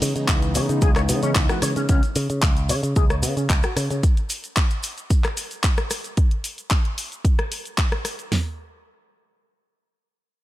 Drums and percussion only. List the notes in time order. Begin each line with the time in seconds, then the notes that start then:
0.02 open hi-hat, maracas, shaker
0.16 closed hi-hat, maracas, shaker
0.28 kick, clap, closed hi-hat, maracas, shaker
0.42 closed hi-hat, maracas
0.55 open hi-hat, maracas, shaker
0.69 closed hi-hat, maracas, shaker
0.81 kick, closed hi-hat, maracas, shaker
0.96 cross-stick, clap, closed hi-hat, maracas
1.09 open hi-hat, maracas, shaker
1.22 closed hi-hat, maracas, shaker
1.35 kick, clap, closed hi-hat, maracas, shaker
1.49 cross-stick, closed hi-hat, maracas
1.62 cross-stick, open hi-hat, shaker, maracas
1.76 closed hi-hat, maracas, shaker
1.89 kick, closed hi-hat, maracas, shaker
2.03 closed hi-hat, maracas
2.16 open hi-hat, maracas, shaker
2.30 closed hi-hat, maracas, shaker
2.42 kick, clap, closed hi-hat, shaker, maracas
2.57 closed hi-hat, maracas
2.69 open hi-hat, maracas, shaker
2.83 closed hi-hat, maracas, shaker
2.96 kick, closed hi-hat, maracas, shaker
3.10 cross-stick, closed hi-hat, maracas
3.23 open hi-hat, maracas, shaker
3.37 closed hi-hat, maracas, shaker
3.49 kick, clap, closed hi-hat, maracas, shaker
3.63 cross-stick, closed hi-hat, maracas
3.77 cross-stick, open hi-hat, maracas, shaker
3.90 closed hi-hat, shaker, maracas
4.03 kick, closed hi-hat, maracas, shaker
4.17 closed hi-hat, maracas
4.29 open hi-hat, maracas, shaker
4.43 closed hi-hat, maracas, shaker
4.56 kick, clap, closed hi-hat, maracas, shaker
4.70 closed hi-hat, maracas
4.83 open hi-hat, maracas, shaker
4.97 closed hi-hat, maracas, shaker
5.10 kick, closed hi-hat, maracas, shaker
5.24 cross-stick, clap, closed hi-hat, maracas
5.37 open hi-hat, maracas, shaker
5.51 closed hi-hat, maracas, shaker
5.63 kick, clap, closed hi-hat, maracas, shaker
5.77 cross-stick, closed hi-hat, maracas
5.90 cross-stick, open hi-hat, maracas, shaker
6.04 closed hi-hat, maracas, shaker
6.17 kick, closed hi-hat, shaker
6.31 closed hi-hat
6.44 open hi-hat, shaker
6.58 closed hi-hat, shaker
6.71 kick, clap, closed hi-hat, shaker
6.85 closed hi-hat
6.98 open hi-hat, shaker
7.12 closed hi-hat, shaker
7.25 kick, closed hi-hat, shaker
7.39 cross-stick, closed hi-hat
7.52 open hi-hat, shaker
7.65 closed hi-hat, shaker
7.78 kick, clap, closed hi-hat, shaker
7.92 cross-stick, closed hi-hat
8.05 cross-stick, open hi-hat, shaker
8.19 closed hi-hat, shaker
8.32 snare, floor tom, open hi-hat